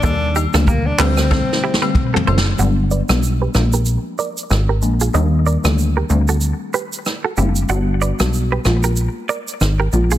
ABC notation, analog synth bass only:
X:1
M:4/4
L:1/16
Q:"Swing 16ths" 1/4=94
K:Dmix
V:1 name="Analog synth bass" clef=bass
_E,,3 D,,3 D,,3 z4 z F,,,2 | G,,,3 B,,,3 _B,,,3 z3 _A,,,2 B,,,2 | _E,,3 D,,3 D,,3 z4 z F,,,2 | G,,,3 B,,,3 _B,,,3 z3 _A,,,2 B,,,2 |]